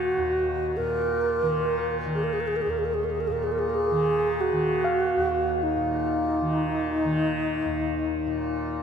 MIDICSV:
0, 0, Header, 1, 4, 480
1, 0, Start_track
1, 0, Key_signature, -6, "minor"
1, 0, Tempo, 500000
1, 8474, End_track
2, 0, Start_track
2, 0, Title_t, "Tine electric piano"
2, 0, Program_c, 0, 4
2, 4651, Note_on_c, 0, 77, 61
2, 8474, Note_off_c, 0, 77, 0
2, 8474, End_track
3, 0, Start_track
3, 0, Title_t, "Alto flute"
3, 0, Program_c, 1, 73
3, 0, Note_on_c, 1, 66, 85
3, 739, Note_on_c, 1, 70, 86
3, 753, Note_off_c, 1, 66, 0
3, 1800, Note_off_c, 1, 70, 0
3, 2064, Note_on_c, 1, 68, 65
3, 2147, Note_on_c, 1, 70, 70
3, 2161, Note_off_c, 1, 68, 0
3, 2237, Note_on_c, 1, 68, 68
3, 2251, Note_off_c, 1, 70, 0
3, 2307, Note_on_c, 1, 70, 67
3, 2322, Note_off_c, 1, 68, 0
3, 2376, Note_on_c, 1, 68, 68
3, 2391, Note_off_c, 1, 70, 0
3, 2459, Note_on_c, 1, 70, 71
3, 2473, Note_off_c, 1, 68, 0
3, 2510, Note_on_c, 1, 68, 66
3, 2525, Note_off_c, 1, 70, 0
3, 2591, Note_on_c, 1, 70, 64
3, 2606, Note_off_c, 1, 68, 0
3, 2672, Note_on_c, 1, 68, 65
3, 2686, Note_off_c, 1, 70, 0
3, 2736, Note_on_c, 1, 70, 65
3, 2750, Note_off_c, 1, 68, 0
3, 2823, Note_on_c, 1, 68, 63
3, 2837, Note_off_c, 1, 70, 0
3, 2922, Note_on_c, 1, 70, 60
3, 2936, Note_off_c, 1, 68, 0
3, 2987, Note_on_c, 1, 68, 64
3, 3001, Note_off_c, 1, 70, 0
3, 3075, Note_on_c, 1, 70, 69
3, 3089, Note_off_c, 1, 68, 0
3, 3144, Note_on_c, 1, 68, 71
3, 3158, Note_off_c, 1, 70, 0
3, 3190, Note_on_c, 1, 70, 65
3, 3204, Note_off_c, 1, 68, 0
3, 3297, Note_on_c, 1, 68, 65
3, 3311, Note_off_c, 1, 70, 0
3, 3378, Note_on_c, 1, 70, 72
3, 3392, Note_off_c, 1, 68, 0
3, 3445, Note_on_c, 1, 68, 75
3, 3460, Note_off_c, 1, 70, 0
3, 3547, Note_on_c, 1, 70, 68
3, 3562, Note_off_c, 1, 68, 0
3, 3596, Note_on_c, 1, 68, 90
3, 3611, Note_off_c, 1, 70, 0
3, 4230, Note_on_c, 1, 66, 86
3, 4245, Note_off_c, 1, 68, 0
3, 5405, Note_on_c, 1, 63, 75
3, 5420, Note_off_c, 1, 66, 0
3, 8474, Note_off_c, 1, 63, 0
3, 8474, End_track
4, 0, Start_track
4, 0, Title_t, "Tanpura"
4, 0, Program_c, 2, 104
4, 0, Note_on_c, 2, 39, 51
4, 0, Note_on_c, 2, 46, 54
4, 0, Note_on_c, 2, 51, 52
4, 161, Note_off_c, 2, 39, 0
4, 165, Note_on_c, 2, 39, 52
4, 747, Note_off_c, 2, 46, 0
4, 751, Note_on_c, 2, 46, 58
4, 1358, Note_off_c, 2, 51, 0
4, 1358, Note_on_c, 2, 51, 51
4, 1968, Note_off_c, 2, 51, 0
4, 1968, Note_on_c, 2, 51, 52
4, 2551, Note_off_c, 2, 39, 0
4, 2554, Note_on_c, 2, 39, 55
4, 3159, Note_off_c, 2, 46, 0
4, 3163, Note_on_c, 2, 46, 54
4, 3755, Note_off_c, 2, 51, 0
4, 3755, Note_on_c, 2, 51, 54
4, 4338, Note_off_c, 2, 51, 0
4, 4338, Note_on_c, 2, 51, 53
4, 4953, Note_off_c, 2, 39, 0
4, 4957, Note_on_c, 2, 39, 52
4, 5532, Note_off_c, 2, 46, 0
4, 5536, Note_on_c, 2, 46, 54
4, 6157, Note_off_c, 2, 51, 0
4, 6157, Note_on_c, 2, 51, 53
4, 6761, Note_off_c, 2, 51, 0
4, 6761, Note_on_c, 2, 51, 57
4, 7339, Note_off_c, 2, 39, 0
4, 7343, Note_on_c, 2, 39, 52
4, 7932, Note_off_c, 2, 46, 0
4, 7936, Note_on_c, 2, 46, 50
4, 8474, Note_off_c, 2, 39, 0
4, 8474, Note_off_c, 2, 46, 0
4, 8474, Note_off_c, 2, 51, 0
4, 8474, End_track
0, 0, End_of_file